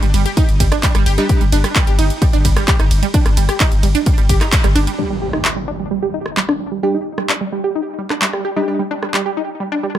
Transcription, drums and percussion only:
0.03 closed hi-hat
0.14 open hi-hat, ride
0.26 closed hi-hat
0.37 kick, closed hi-hat, ride
0.49 closed hi-hat
0.60 kick, open hi-hat, ride
0.72 cross-stick, closed hi-hat
0.83 kick, clap, closed hi-hat, ride
0.95 cross-stick, closed hi-hat
1.06 open hi-hat, ride
1.18 closed hi-hat
1.29 kick, closed hi-hat, ride
1.41 closed hi-hat
1.52 open hi-hat, ride
1.64 cross-stick, closed hi-hat
1.76 kick, clap, closed hi-hat, ride
1.87 closed hi-hat
1.99 open hi-hat, ride
2.10 closed hi-hat
2.22 kick, closed hi-hat, ride
2.33 closed hi-hat
2.45 kick, open hi-hat, ride
2.57 cross-stick, closed hi-hat
2.68 kick, clap, closed hi-hat, ride
2.80 cross-stick, closed hi-hat
2.91 open hi-hat, ride
3.03 closed hi-hat
3.14 kick, closed hi-hat, ride
3.26 cross-stick, closed hi-hat
3.37 open hi-hat, ride
3.49 cross-stick, closed hi-hat
3.60 kick, clap, closed hi-hat, ride
3.72 closed hi-hat
3.83 open hi-hat, ride
3.95 closed hi-hat
4.06 kick, closed hi-hat, ride
4.18 closed hi-hat
4.29 kick, open hi-hat, ride
4.41 cross-stick, clap, closed hi-hat
4.52 kick, clap, closed hi-hat, ride
4.64 cross-stick, closed hi-hat
4.76 open hi-hat, ride
4.87 closed hi-hat
5.33 cross-stick
5.45 clap
6.26 cross-stick
6.37 clap
6.49 cross-stick
7.18 cross-stick
7.29 clap
8.10 cross-stick, clap
8.22 clap
8.33 cross-stick
9.03 cross-stick
9.14 clap
9.95 cross-stick

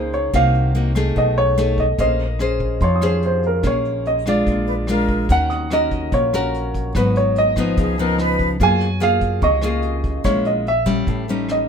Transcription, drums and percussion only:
0.13 closed hi-hat
0.34 kick, cross-stick, closed hi-hat
0.54 closed hi-hat
0.74 closed hi-hat
0.95 cross-stick, closed hi-hat
1.16 kick, closed hi-hat
1.37 closed hi-hat
1.58 cross-stick, closed hi-hat
1.78 kick, closed hi-hat
1.98 kick, closed hi-hat
2.19 closed hi-hat
2.39 cross-stick, closed hi-hat
2.60 kick, closed hi-hat
2.80 kick, closed hi-hat
3.01 cross-stick, closed hi-hat
3.22 closed hi-hat
3.43 closed hi-hat
3.63 kick, cross-stick, closed hi-hat
3.85 closed hi-hat
4.06 closed hi-hat
4.26 cross-stick, closed hi-hat
4.47 kick, closed hi-hat
4.68 closed hi-hat
4.87 cross-stick, closed hi-hat
5.08 kick, closed hi-hat
5.29 kick, closed hi-hat
5.50 closed hi-hat
5.70 cross-stick, closed hi-hat
5.91 kick, closed hi-hat
6.12 kick, closed hi-hat
6.33 cross-stick, closed hi-hat
6.54 closed hi-hat
6.74 kick, closed hi-hat
6.95 kick, cross-stick, closed hi-hat
7.16 closed hi-hat
7.36 closed hi-hat
7.56 kick, cross-stick, closed hi-hat
7.77 kick, closed hi-hat
7.98 closed hi-hat
8.18 cross-stick, closed hi-hat
8.39 kick, closed hi-hat
8.60 kick, closed hi-hat
8.80 closed hi-hat
9.01 cross-stick, closed hi-hat
9.21 kick, closed hi-hat
9.42 kick, closed hi-hat
9.62 cross-stick, closed hi-hat
9.82 closed hi-hat
10.04 kick, closed hi-hat
10.25 kick, cross-stick, closed hi-hat
10.45 closed hi-hat
10.66 closed hi-hat
10.86 kick, cross-stick, closed hi-hat
11.07 kick, closed hi-hat
11.28 closed hi-hat
11.49 cross-stick, closed hi-hat

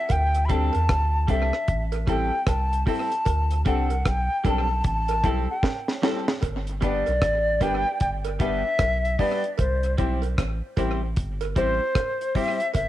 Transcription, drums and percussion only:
0.09 kick, closed hi-hat, cowbell
0.34 closed hi-hat
0.49 kick, closed hi-hat
0.73 closed hi-hat, cowbell
0.89 kick, cross-stick, closed hi-hat
1.28 kick, closed hi-hat
1.53 cross-stick
1.68 kick, closed hi-hat
1.92 closed hi-hat, cowbell
2.07 kick, closed hi-hat
2.47 kick, cross-stick, closed hi-hat, cowbell
2.73 closed hi-hat
2.87 kick, open hi-hat
3.12 closed hi-hat
3.25 kick, closed hi-hat, cowbell
3.51 closed hi-hat
3.66 kick, closed hi-hat
3.90 closed hi-hat, cowbell
4.06 kick, cross-stick, closed hi-hat
4.45 kick, closed hi-hat, cowbell
4.84 kick, closed hi-hat
5.08 closed hi-hat, cowbell
5.24 kick, closed hi-hat
5.63 kick, snare, cowbell
5.88 snare
6.03 snare
6.28 snare
6.42 kick, closed hi-hat, cowbell
6.67 closed hi-hat
6.82 kick, closed hi-hat
7.06 closed hi-hat, cowbell
7.22 kick, cross-stick, closed hi-hat
7.61 kick, closed hi-hat, cowbell
8.00 kick, closed hi-hat
8.25 closed hi-hat, cowbell
8.40 kick, closed hi-hat
8.79 kick, cross-stick, closed hi-hat, cowbell
9.05 closed hi-hat
9.19 kick, open hi-hat
9.44 closed hi-hat
9.58 kick, closed hi-hat, cowbell
9.83 closed hi-hat
9.98 kick, closed hi-hat
10.22 closed hi-hat, cowbell
10.38 kick, cross-stick, closed hi-hat
10.77 kick, closed hi-hat, cowbell
11.16 kick, closed hi-hat
11.41 closed hi-hat, cowbell
11.56 kick, closed hi-hat
11.95 kick, cross-stick, closed hi-hat, cowbell
12.21 closed hi-hat
12.35 kick, open hi-hat
12.60 closed hi-hat
12.74 kick, closed hi-hat, cowbell

